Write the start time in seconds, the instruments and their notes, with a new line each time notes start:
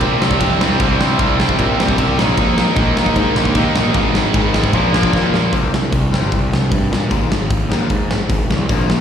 Already playing: distorted electric guitar C3 G3 C4
0.01 picked electric bass A#2, overdriven electric guitar C3 G3 C4, kick, ride
0.21 picked electric bass C2, overdriven electric guitar C3 G3 C4, snare
0.31 kick
0.41 picked electric bass F2, overdriven electric guitar C3 G3 C4, kick, ride
0.60 picked electric bass C2, overdriven electric guitar C3 G3 C4, snare
0.79 picked electric bass C2, overdriven electric guitar C3 G3 C4, kick, ride
0.99 overdriven electric guitar C3 G3 C4, snare
1.19 picked electric bass C2, overdriven electric guitar C3 G3 C4, kick, ride
1.38 overdriven electric guitar C3 G3 C4, snare
1.49 kick
1.58 picked electric bass A#2, overdriven electric guitar C3 G3 C4, kick, ride
1.78 picked electric bass C2, overdriven electric guitar C3 G3 C4, snare
1.88 kick
1.98 picked electric bass C2, overdriven electric guitar C3 G3 C4, kick, ride
2.19 picked electric bass A#1, overdriven electric guitar D#3 A#3 D#4, snare
2.37 picked electric bass A#1, overdriven electric guitar D#3 A#3 D#4, kick, ride
2.58 overdriven electric guitar D#3 A#3 D#4, snare
2.76 picked electric bass A#1, overdriven electric guitar D#3 A#3 D#4, kick, ride
2.97 overdriven electric guitar D#3 A#3 D#4, snare
3.06 kick
3.16 picked electric bass G#2, overdriven electric guitar D#3 A#3 D#4, kick, ride
3.36 picked electric bass A#1, overdriven electric guitar D#3 A#3 D#4, snare
3.45 kick
3.55 picked electric bass D#2, overdriven electric guitar D#3 A#3 D#4, kick, ride
3.75 picked electric bass A#1, overdriven electric guitar D#3 A#3 D#4, snare
3.94 picked electric bass G#1, overdriven electric guitar G#2 D#3 G#3, kick, ride
4.15 overdriven electric guitar G#2 D#3 G#3, snare
4.34 picked electric bass G#1, overdriven electric guitar G#2 D#3 G#3, kick, ride
4.54 overdriven electric guitar G#2 D#3 G#3, snare
4.64 kick
4.73 picked electric bass A#1, overdriven electric guitar A#2 F3 A#3, kick, ride
4.93 picked electric bass A#1, overdriven electric guitar A#2 F3 A#3, snare
5.03 kick
5.13 picked electric bass D#2, overdriven electric guitar A#2 F3 A#3, kick, snare
5.32 picked electric bass A#1, overdriven electric guitar A#2 F3 A#3, snare
5.52 picked electric bass C2, overdriven electric guitar C3 G3 C4, kick, open hi-hat
5.72 picked electric bass C2, overdriven electric guitar C3 G3, snare
5.92 picked electric bass C2, overdriven electric guitar C3 G3, kick, open hi-hat
6.11 picked electric bass G1, overdriven electric guitar C3 G3 C4, snare
6.31 picked electric bass C2, overdriven electric guitar C3 G3, kick, open hi-hat
6.51 overdriven electric guitar C3 G3, snare
6.70 picked electric bass G2, overdriven electric guitar C3 G3, kick, open hi-hat
6.91 picked electric bass A#2, overdriven electric guitar C3 G3, snare
7.10 picked electric bass G#1, overdriven electric guitar G#2 D#3 G#3, kick, open hi-hat
7.29 overdriven electric guitar G#2 D#3, snare
7.49 picked electric bass D#2, overdriven electric guitar G#2 D#3, kick, open hi-hat
7.70 picked electric bass D#2, overdriven electric guitar G#2 D#3 G#3, snare
7.90 picked electric bass G#2, overdriven electric guitar G#2 D#3, kick, open hi-hat
8.10 picked electric bass G#1, overdriven electric guitar G#2 D#3, snare
8.30 picked electric bass G#1, overdriven electric guitar G#2 D#3, kick, open hi-hat
8.50 picked electric bass C2, overdriven electric guitar G#2 D#3, snare
8.69 picked electric bass A#1, overdriven electric guitar A#2 F3 A#3, kick, open hi-hat
8.89 picked electric bass A#1, overdriven electric guitar A#2 F3, snare